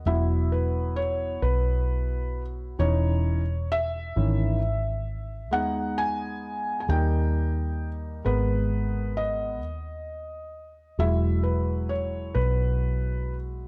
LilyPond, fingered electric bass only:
\new Staff \with { instrumentName = "Fingered electric bass" } { \clef bass \time 6/8 \key gis \minor \tempo 4. = 44 e,,4. b,,4. | e,,4. gis,,4. | dis,4. dis,4. | gis,,4. dis,4. |
e,,4. b,,4. | }